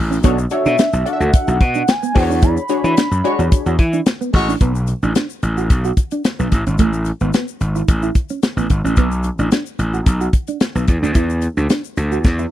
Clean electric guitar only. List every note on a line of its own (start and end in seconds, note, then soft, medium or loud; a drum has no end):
0.11 0.20 C#4 medium
0.24 0.34 B3 medium
0.51 muted clean electric guitar stroke soft
0.66 0.75 D4 medium
0.79 0.89 D4 medium
1.06 muted clean electric guitar stroke soft
1.20 1.30 F#4 medium
1.48 1.57 F#4 medium
1.61 muted clean electric guitar stroke soft
1.75 1.84 D4 medium
2.03 2.12 B3 medium
2.30 2.39 D4 medium
2.43 2.53 E4 loud
2.70 muted clean electric guitar stroke soft
2.84 2.93 D4 medium
2.97 3.08 D4 medium
3.24 muted clean electric guitar stroke soft
3.39 3.48 F#4 medium
3.66 3.75 F#4 medium
3.79 muted clean electric guitar stroke soft
3.93 4.02 D4 medium
4.21 4.30 B3 medium
4.34 muted clean electric guitar stroke soft
4.49 4.57 D4 medium
4.61 4.71 B3 medium
4.89 muted clean electric guitar stroke soft
5.03 5.12 D4 medium
5.16 5.26 D4 medium
5.43 muted clean electric guitar stroke soft
5.58 5.66 F#4 medium
5.85 5.94 F#4 medium
5.98 muted clean electric guitar stroke soft
6.12 6.21 D4 medium
6.39 6.48 B3 medium
6.52 muted clean electric guitar stroke soft
6.67 6.76 C#4 medium
6.79 6.89 A3 medium
7.07 muted clean electric guitar stroke soft
7.21 7.30 B3 medium
7.34 7.44 B3 medium
7.62 muted clean electric guitar stroke soft
7.75 7.84 E4 medium
8.03 8.12 E4 medium
8.16 muted clean electric guitar stroke soft
8.30 8.39 C#4 medium
8.57 8.66 B3 medium
8.70 muted clean electric guitar stroke soft
8.85 8.94 C#4 medium
8.98 9.08 B3 medium
9.25 muted clean electric guitar stroke soft
9.39 9.48 D4 medium
9.52 9.62 D4 medium
9.79 muted clean electric guitar stroke soft
9.94 10.03 F#4 medium
10.21 10.30 F#4 medium
10.34 muted clean electric guitar stroke soft
10.48 10.57 D4 medium
10.76 10.85 B3 medium
10.88 muted clean electric guitar stroke soft
11.03 11.12 D4 medium
11.16 11.26 E4 medium
11.43 muted clean electric guitar stroke soft
11.57 11.66 D4 medium
11.70 11.80 D4 medium
11.98 muted clean electric guitar stroke soft
12.12 12.21 F#4 medium
12.39 12.48 E4 medium